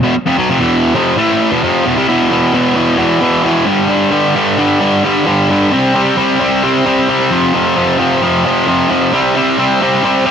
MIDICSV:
0, 0, Header, 1, 2, 480
1, 0, Start_track
1, 0, Tempo, 455581
1, 266, Time_signature, 4, 2, 24, 8
1, 10862, End_track
2, 0, Start_track
2, 0, Title_t, "Distorted electric guitar"
2, 0, Program_c, 0, 30
2, 31, Note_on_c, 0, 40, 84
2, 43, Note_on_c, 0, 47, 98
2, 141, Note_off_c, 0, 40, 0
2, 147, Note_off_c, 0, 47, 0
2, 272, Note_on_c, 0, 41, 78
2, 280, Note_on_c, 0, 48, 97
2, 382, Note_off_c, 0, 41, 0
2, 386, Note_off_c, 0, 48, 0
2, 402, Note_on_c, 0, 47, 75
2, 406, Note_on_c, 0, 54, 94
2, 507, Note_off_c, 0, 47, 0
2, 509, Note_off_c, 0, 54, 0
2, 517, Note_on_c, 0, 41, 79
2, 523, Note_on_c, 0, 48, 92
2, 621, Note_off_c, 0, 41, 0
2, 625, Note_on_c, 0, 40, 86
2, 627, Note_off_c, 0, 48, 0
2, 637, Note_on_c, 0, 47, 80
2, 641, Note_on_c, 0, 52, 92
2, 979, Note_off_c, 0, 40, 0
2, 985, Note_off_c, 0, 47, 0
2, 987, Note_off_c, 0, 52, 0
2, 995, Note_on_c, 0, 41, 99
2, 1001, Note_on_c, 0, 48, 98
2, 1009, Note_on_c, 0, 53, 86
2, 1224, Note_off_c, 0, 41, 0
2, 1228, Note_off_c, 0, 48, 0
2, 1231, Note_off_c, 0, 53, 0
2, 1236, Note_on_c, 0, 45, 84
2, 1239, Note_on_c, 0, 52, 100
2, 1247, Note_on_c, 0, 57, 111
2, 1585, Note_off_c, 0, 45, 0
2, 1587, Note_off_c, 0, 52, 0
2, 1591, Note_off_c, 0, 57, 0
2, 1597, Note_on_c, 0, 40, 74
2, 1604, Note_on_c, 0, 47, 84
2, 1706, Note_off_c, 0, 40, 0
2, 1709, Note_off_c, 0, 47, 0
2, 1718, Note_on_c, 0, 41, 90
2, 1724, Note_on_c, 0, 48, 88
2, 1730, Note_on_c, 0, 53, 100
2, 1947, Note_off_c, 0, 41, 0
2, 1950, Note_off_c, 0, 48, 0
2, 1953, Note_off_c, 0, 53, 0
2, 1953, Note_on_c, 0, 40, 92
2, 1961, Note_on_c, 0, 47, 95
2, 2064, Note_off_c, 0, 40, 0
2, 2068, Note_off_c, 0, 47, 0
2, 2076, Note_on_c, 0, 48, 69
2, 2082, Note_on_c, 0, 55, 88
2, 2186, Note_off_c, 0, 48, 0
2, 2188, Note_off_c, 0, 55, 0
2, 2192, Note_on_c, 0, 40, 86
2, 2200, Note_on_c, 0, 47, 105
2, 2205, Note_on_c, 0, 52, 112
2, 2417, Note_off_c, 0, 40, 0
2, 2424, Note_off_c, 0, 47, 0
2, 2430, Note_on_c, 0, 40, 84
2, 2434, Note_off_c, 0, 52, 0
2, 2437, Note_on_c, 0, 47, 83
2, 2446, Note_on_c, 0, 52, 89
2, 2655, Note_off_c, 0, 40, 0
2, 2667, Note_off_c, 0, 52, 0
2, 2668, Note_on_c, 0, 40, 91
2, 2669, Note_off_c, 0, 47, 0
2, 2680, Note_on_c, 0, 52, 101
2, 2681, Note_on_c, 0, 47, 118
2, 2885, Note_off_c, 0, 40, 0
2, 2893, Note_off_c, 0, 47, 0
2, 2897, Note_on_c, 0, 40, 86
2, 2898, Note_off_c, 0, 52, 0
2, 2905, Note_on_c, 0, 47, 91
2, 2910, Note_on_c, 0, 52, 97
2, 3129, Note_off_c, 0, 40, 0
2, 3134, Note_off_c, 0, 47, 0
2, 3141, Note_on_c, 0, 40, 90
2, 3147, Note_on_c, 0, 47, 95
2, 3148, Note_off_c, 0, 52, 0
2, 3161, Note_on_c, 0, 52, 82
2, 3373, Note_off_c, 0, 40, 0
2, 3379, Note_off_c, 0, 47, 0
2, 3384, Note_off_c, 0, 52, 0
2, 3386, Note_on_c, 0, 40, 85
2, 3392, Note_on_c, 0, 47, 92
2, 3397, Note_on_c, 0, 52, 102
2, 3607, Note_off_c, 0, 40, 0
2, 3617, Note_off_c, 0, 47, 0
2, 3620, Note_on_c, 0, 40, 78
2, 3629, Note_off_c, 0, 52, 0
2, 3630, Note_on_c, 0, 47, 93
2, 3642, Note_on_c, 0, 52, 98
2, 3851, Note_off_c, 0, 40, 0
2, 3856, Note_off_c, 0, 47, 0
2, 3858, Note_on_c, 0, 43, 105
2, 3862, Note_off_c, 0, 52, 0
2, 3866, Note_on_c, 0, 50, 109
2, 3874, Note_on_c, 0, 55, 92
2, 4085, Note_off_c, 0, 43, 0
2, 4092, Note_off_c, 0, 50, 0
2, 4097, Note_on_c, 0, 43, 87
2, 4105, Note_off_c, 0, 55, 0
2, 4105, Note_on_c, 0, 50, 105
2, 4109, Note_on_c, 0, 55, 116
2, 4323, Note_off_c, 0, 43, 0
2, 4335, Note_off_c, 0, 50, 0
2, 4336, Note_on_c, 0, 43, 92
2, 4347, Note_off_c, 0, 55, 0
2, 4348, Note_on_c, 0, 50, 82
2, 4351, Note_on_c, 0, 55, 97
2, 4573, Note_off_c, 0, 43, 0
2, 4579, Note_off_c, 0, 50, 0
2, 4586, Note_on_c, 0, 43, 85
2, 4591, Note_on_c, 0, 50, 104
2, 4592, Note_off_c, 0, 55, 0
2, 4597, Note_on_c, 0, 55, 105
2, 4808, Note_off_c, 0, 43, 0
2, 4815, Note_off_c, 0, 50, 0
2, 4821, Note_on_c, 0, 43, 81
2, 4822, Note_off_c, 0, 55, 0
2, 4828, Note_on_c, 0, 50, 90
2, 4835, Note_on_c, 0, 55, 98
2, 5044, Note_off_c, 0, 43, 0
2, 5050, Note_off_c, 0, 50, 0
2, 5056, Note_off_c, 0, 55, 0
2, 5057, Note_on_c, 0, 43, 83
2, 5062, Note_on_c, 0, 50, 88
2, 5069, Note_on_c, 0, 55, 86
2, 5295, Note_off_c, 0, 43, 0
2, 5302, Note_off_c, 0, 50, 0
2, 5307, Note_on_c, 0, 43, 104
2, 5309, Note_off_c, 0, 55, 0
2, 5314, Note_on_c, 0, 50, 109
2, 5321, Note_on_c, 0, 55, 104
2, 5529, Note_off_c, 0, 43, 0
2, 5534, Note_off_c, 0, 50, 0
2, 5541, Note_on_c, 0, 43, 94
2, 5543, Note_off_c, 0, 55, 0
2, 5547, Note_on_c, 0, 50, 94
2, 5556, Note_on_c, 0, 55, 90
2, 5778, Note_off_c, 0, 43, 0
2, 5789, Note_off_c, 0, 50, 0
2, 5791, Note_on_c, 0, 43, 92
2, 5794, Note_off_c, 0, 55, 0
2, 5801, Note_on_c, 0, 50, 91
2, 5806, Note_on_c, 0, 55, 108
2, 6016, Note_off_c, 0, 43, 0
2, 6021, Note_off_c, 0, 50, 0
2, 6023, Note_off_c, 0, 55, 0
2, 6026, Note_on_c, 0, 48, 106
2, 6036, Note_on_c, 0, 55, 95
2, 6039, Note_on_c, 0, 60, 101
2, 6247, Note_off_c, 0, 48, 0
2, 6260, Note_on_c, 0, 48, 78
2, 6263, Note_off_c, 0, 55, 0
2, 6275, Note_off_c, 0, 60, 0
2, 6275, Note_on_c, 0, 55, 85
2, 6279, Note_on_c, 0, 60, 85
2, 6488, Note_off_c, 0, 48, 0
2, 6493, Note_off_c, 0, 55, 0
2, 6500, Note_on_c, 0, 48, 96
2, 6506, Note_on_c, 0, 55, 104
2, 6508, Note_off_c, 0, 60, 0
2, 6513, Note_on_c, 0, 60, 104
2, 6730, Note_off_c, 0, 55, 0
2, 6731, Note_off_c, 0, 48, 0
2, 6742, Note_on_c, 0, 55, 97
2, 6744, Note_off_c, 0, 60, 0
2, 6744, Note_on_c, 0, 48, 95
2, 6748, Note_on_c, 0, 60, 95
2, 6973, Note_off_c, 0, 48, 0
2, 6978, Note_off_c, 0, 55, 0
2, 6986, Note_on_c, 0, 48, 90
2, 6991, Note_on_c, 0, 55, 79
2, 6993, Note_off_c, 0, 60, 0
2, 6997, Note_on_c, 0, 60, 91
2, 7210, Note_off_c, 0, 48, 0
2, 7220, Note_off_c, 0, 55, 0
2, 7223, Note_on_c, 0, 48, 93
2, 7231, Note_off_c, 0, 60, 0
2, 7233, Note_on_c, 0, 55, 108
2, 7235, Note_on_c, 0, 60, 111
2, 7453, Note_off_c, 0, 48, 0
2, 7463, Note_off_c, 0, 55, 0
2, 7466, Note_on_c, 0, 48, 81
2, 7474, Note_off_c, 0, 60, 0
2, 7475, Note_on_c, 0, 55, 96
2, 7478, Note_on_c, 0, 60, 82
2, 7693, Note_off_c, 0, 48, 0
2, 7697, Note_off_c, 0, 55, 0
2, 7700, Note_on_c, 0, 41, 103
2, 7706, Note_on_c, 0, 48, 105
2, 7711, Note_on_c, 0, 53, 115
2, 7932, Note_off_c, 0, 41, 0
2, 7936, Note_off_c, 0, 48, 0
2, 7943, Note_off_c, 0, 53, 0
2, 7944, Note_on_c, 0, 41, 87
2, 7949, Note_on_c, 0, 48, 96
2, 7955, Note_on_c, 0, 53, 103
2, 8172, Note_off_c, 0, 41, 0
2, 8174, Note_off_c, 0, 48, 0
2, 8177, Note_off_c, 0, 53, 0
2, 8184, Note_on_c, 0, 41, 80
2, 8186, Note_on_c, 0, 48, 90
2, 8189, Note_on_c, 0, 53, 101
2, 8400, Note_off_c, 0, 41, 0
2, 8405, Note_off_c, 0, 48, 0
2, 8413, Note_off_c, 0, 53, 0
2, 8413, Note_on_c, 0, 41, 96
2, 8418, Note_on_c, 0, 48, 99
2, 8425, Note_on_c, 0, 53, 107
2, 8649, Note_off_c, 0, 41, 0
2, 8651, Note_off_c, 0, 48, 0
2, 8661, Note_off_c, 0, 53, 0
2, 8662, Note_on_c, 0, 41, 87
2, 8664, Note_on_c, 0, 48, 88
2, 8674, Note_on_c, 0, 53, 99
2, 8892, Note_off_c, 0, 41, 0
2, 8902, Note_off_c, 0, 48, 0
2, 8905, Note_on_c, 0, 41, 83
2, 8906, Note_off_c, 0, 53, 0
2, 8914, Note_on_c, 0, 48, 93
2, 8919, Note_on_c, 0, 53, 94
2, 9128, Note_off_c, 0, 41, 0
2, 9131, Note_off_c, 0, 48, 0
2, 9138, Note_off_c, 0, 53, 0
2, 9141, Note_on_c, 0, 41, 101
2, 9144, Note_on_c, 0, 48, 93
2, 9151, Note_on_c, 0, 53, 104
2, 9360, Note_off_c, 0, 41, 0
2, 9372, Note_off_c, 0, 48, 0
2, 9373, Note_on_c, 0, 41, 80
2, 9377, Note_off_c, 0, 53, 0
2, 9385, Note_on_c, 0, 48, 97
2, 9390, Note_on_c, 0, 53, 80
2, 9605, Note_off_c, 0, 41, 0
2, 9606, Note_off_c, 0, 48, 0
2, 9614, Note_off_c, 0, 53, 0
2, 9619, Note_on_c, 0, 48, 104
2, 9628, Note_on_c, 0, 55, 122
2, 9629, Note_off_c, 0, 60, 0
2, 9633, Note_on_c, 0, 60, 110
2, 9855, Note_off_c, 0, 48, 0
2, 9858, Note_off_c, 0, 55, 0
2, 9859, Note_on_c, 0, 48, 93
2, 9862, Note_on_c, 0, 55, 93
2, 9866, Note_off_c, 0, 60, 0
2, 9870, Note_on_c, 0, 60, 96
2, 10089, Note_off_c, 0, 48, 0
2, 10093, Note_on_c, 0, 48, 70
2, 10099, Note_off_c, 0, 55, 0
2, 10103, Note_on_c, 0, 55, 84
2, 10104, Note_off_c, 0, 60, 0
2, 10108, Note_on_c, 0, 60, 89
2, 10336, Note_off_c, 0, 48, 0
2, 10340, Note_on_c, 0, 48, 95
2, 10344, Note_off_c, 0, 55, 0
2, 10349, Note_on_c, 0, 55, 98
2, 10351, Note_off_c, 0, 60, 0
2, 10355, Note_on_c, 0, 60, 118
2, 10571, Note_off_c, 0, 48, 0
2, 10575, Note_on_c, 0, 48, 100
2, 10580, Note_off_c, 0, 55, 0
2, 10584, Note_on_c, 0, 55, 89
2, 10585, Note_off_c, 0, 60, 0
2, 10590, Note_on_c, 0, 60, 108
2, 10792, Note_off_c, 0, 48, 0
2, 10800, Note_off_c, 0, 55, 0
2, 10805, Note_on_c, 0, 48, 82
2, 10807, Note_off_c, 0, 60, 0
2, 10812, Note_on_c, 0, 55, 88
2, 10819, Note_on_c, 0, 60, 92
2, 10862, Note_off_c, 0, 48, 0
2, 10862, Note_off_c, 0, 55, 0
2, 10862, Note_off_c, 0, 60, 0
2, 10862, End_track
0, 0, End_of_file